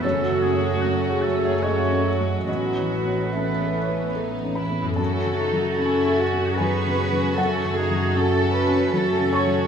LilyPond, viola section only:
\new Staff \with { instrumentName = "Viola section" } { \time 3/4 \key fis \dorian \tempo 4 = 75 << { a2. | b2~ b8 b'8 | a'2 gis'4 | fis'2~ fis'8 cis''8 | } \\ { fis2.~ | fis4 e4. r8 | r2. | r2. | } >> }